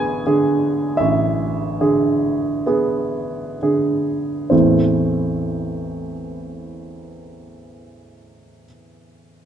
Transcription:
Already playing: A1 D3 B3 G#4 G#5 B5
0.27 D3 G#4
0.97 A1 E5
1.81 D3 G#4
2.66 B3 G#4
3.63 D3 G#4
4.50 A1 E2 E3 A3 C4 E4 C5

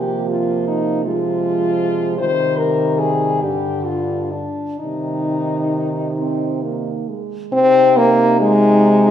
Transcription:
Already playing: C3 F3 A#3 G4
0.28 F4
0.67 D#4
1.05 F3 G#3 F4
2.18 C3 D#3 G3 C5
2.57 A#4
2.99 G#4
3.41 G2 D3 G4
3.85 F4
4.31 D4
4.79 C3 D#3 G3 D#4
6.19 C4
6.63 A#3
7.09 G#3
7.52 C3 C4 D#4
7.97 A#3
8.41 G#3
8.77 D#4

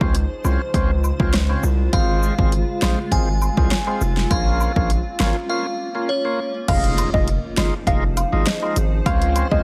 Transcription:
Already playing: C#3 G#3 F4 C5
0.01 C#2 C4 C#4 F4, kick
0.15 closed hi-hat
0.44 C2 C4 C#4 F4, cabasa, high woodblock
0.74 C#2 C4 C#4 F4, kick, closed hi-hat
1.04 cabasa, high woodblock
1.20 C#2 C4 C#4 F4, kick
1.33 cross-stick, snare, closed hi-hat
1.49 C4 C#4 F4, high woodblock
1.63 C2, cabasa
1.93 G#1 G#3 C4 F4 F5, kick, closed hi-hat, high woodblock
2.23 cabasa
2.38 G#1 G#3 C4 F4, kick
2.52 closed hi-hat
2.82 A#1 G#3 C4 F4, cross-stick, snare, cabasa, high woodblock
3.12 G#1 G#3 C4 F4 G#5, kick, closed hi-hat
3.42 cabasa, high woodblock
3.57 C2 G#3 C4 F4, kick
3.71 cross-stick, snare, closed hi-hat
3.87 G#3 C4 F4, high woodblock
4.01 F1, cabasa
4.17 snare
4.31 A#1 A#3 C#4 F4 F5, kick, closed hi-hat, high woodblock
4.60 cabasa, high woodblock
4.76 A#1 A#3 C#4 F4, kick
4.90 closed hi-hat
5.20 G#1 A#3 C#4 F4, cross-stick, snare, cabasa, high woodblock
5.49 A#3 C#4 F4 F5
5.95 A#3 C#4 F4
6.09 C#5
6.25 A#3 C#4 F4
6.68 F1 F3 G#3 D#4 F4 G#4 C5 F5, kick, closed hi-hat, crash, impact, high woodblock
6.84 closed hi-hat
6.98 closed hi-hat, cabasa, high woodblock
7.14 F1 D#4 F4 D#5, kick
7.28 closed hi-hat
7.57 G1 G#3 D#4 F4 D#5, cross-stick, snare, closed hi-hat, cabasa, high woodblock
7.87 F1 G#3 D#4 F4 F5, kick, closed hi-hat
8.17 F5, closed hi-hat, cabasa, high woodblock
8.32 G#1 G#3 D#4 F4
8.46 D#5, cross-stick, snare, closed hi-hat
8.62 G#3 D#4 F4, high woodblock
8.76 G#1, closed hi-hat, cabasa
9.06 C#2 C#3 G#3 C4 C#4 F4 F5, kick, closed hi-hat, high woodblock
9.22 closed hi-hat
9.36 closed hi-hat, cabasa, high woodblock
9.51 C#2 C4 C#4 F4 D#5, kick

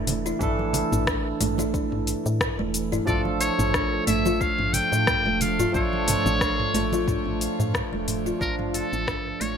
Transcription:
Already playing: E1 E3 A3 D4 E4 A4
0.07 open hi-hat, muted conga, low conga, shaker
0.26 E4, shaker
0.39 A1 E3 A3 D4 E4 A4, kick, mid tom, high conga, shaker
0.59 high conga
0.73 open hi-hat, low conga, shaker
0.92 A1, mid tom, muted conga, shaker
1.07 D4, kick, cross-stick, shaker
1.41 A1 A3, mid tom, open hi-hat, shaker
1.58 E4, muted conga, high conga, shaker
1.74 D4, kick, shaker
1.92 A1, mid tom
2.07 open hi-hat, shaker
2.26 A2, shaker
2.41 kick, cross-stick, mid tom, shaker
2.59 E1 A3
2.74 open hi-hat, shaker
2.92 E4, mid tom, shaker
3.05 A1 F3 A3 D4 F4 D5, kick, mid tom, high conga, shaker
3.10 A4
3.15 A3
3.25 high conga
3.41 C#5, open hi-hat, shaker
3.57 A1 D4, mid tom, muted conga, shaker
3.74 D4, kick, cross-stick, shaker
3.85 F4
4.07 A1 A3 E5, mid tom, open hi-hat, shaker
4.25 F4, muted conga, high conga, shaker
4.41 D4 F5 A5, kick, shaker
4.59 A1, mid tom, muted conga
4.73 G5, open hi-hat, low conga, shaker
4.92 A2, muted conga, shaker
5.07 kick, cross-stick, mid tom, shaker
5.26 E1 A3
5.41 F5, open hi-hat, muted conga, low conga, shaker
5.59 F4, mid tom, shaker
5.72 A1 F3 A3 D4 F4 A4 C#5, kick, high conga, shaker
5.93 high conga
6.08 mid tom, open hi-hat, low conga, shaker
6.26 A1, muted conga, shaker
6.41 D4, kick, cross-stick, shaker
6.60 mid tom
6.74 A1 A3, open hi-hat, shaker
6.92 F4, muted conga, high conga, shaker
7.08 D4, kick, mid tom, shaker
7.26 A1
7.41 open hi-hat, shaker
7.60 A2, mid tom, shaker
7.74 kick, cross-stick, shaker
7.93 E1 A3
8.08 mid tom, open hi-hat, shaker
8.26 F4, shaker
8.39 A1 F3 D4 F4 A#4, kick, high conga, shaker
8.59 mid tom, high conga
8.74 A4, open hi-hat, shaker
8.93 A1, muted conga, shaker
9.02 G4
9.07 D4, kick, cross-stick, mid tom, shaker
9.41 A1 A3 C#5, open hi-hat, shaker

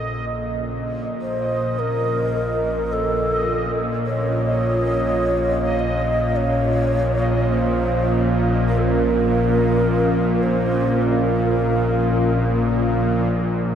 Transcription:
Already playing: A#1 A#2 A#3 C#4 F4 D#5 F5
1.21 C5
1.79 A#4
2.92 A4
4.06 C#5
5.79 D#5
6.36 C#5
7.53 C5
8.68 A#4
8.78 A4
8.82 A#4
10.43 C5
11.02 A#4
13.31 A#1 A#2 A#4

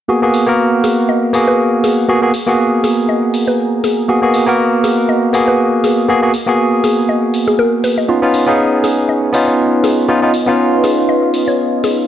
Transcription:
0.08 A#3 B3 F#4 G#4 F#5 G#5 A#5 D#6
0.22 A#3 B3 F#4 G#4
0.34 open hi-hat
0.46 A#3 B3 F#4 A#4 F#5
0.84 G#4, open hi-hat
1.09 D#5
1.33 A#3 B3 F#4 G#4, open hi-hat
1.48 B4
1.84 G#4, open hi-hat
2.08 A#3 B3 F#4 G#4
2.22 A#3 B3 F#4 G#4
2.34 open hi-hat
2.46 A#3 B3 F#4 G#4 F#5
2.84 G#4, open hi-hat
3.09 D#5
3.34 open hi-hat
3.48 B4
3.84 G#4, open hi-hat
4.08 A#3 B3 F#4 G#4
4.22 A#3 B3 F#4 G#4
4.34 open hi-hat
4.46 A#3 B3 F#4 A#4 F#5
4.84 G#4, open hi-hat
5.09 D#5
5.33 A#3 B3 F#4 G#4, open hi-hat
5.48 B4
5.84 G#4, open hi-hat
6.08 A#3 B3 F#4 G#4
6.22 A#3 B3 F#4 G#4
6.34 open hi-hat
6.46 A#3 B3 F#4 G#4 F#5
6.84 G#4, open hi-hat
7.09 D#5
7.34 open hi-hat
7.48 G#4
7.59 A#4
7.84 B4, open hi-hat
7.98 D#5
8.08 B3 C#4 D#4 F4 B4 D#5 F5 C#6
8.22 B3 C#4 D#4 F4
8.34 open hi-hat
8.46 B3 C#4 D#4 G#4 F5
8.84 G#4, open hi-hat
9.09 D#5
9.33 B3 C#4 D#4 F4, open hi-hat
9.48 C#5
9.84 G#4, open hi-hat
10.08 B3 C#4 D#4 F4 D#6
10.22 B3 C#4 D#4 F4
10.34 open hi-hat
10.47 B3 C#4 D#4 F4 F5
10.84 G#4, open hi-hat
11.09 D#5
11.34 open hi-hat
11.48 C#5
11.84 G#4, open hi-hat

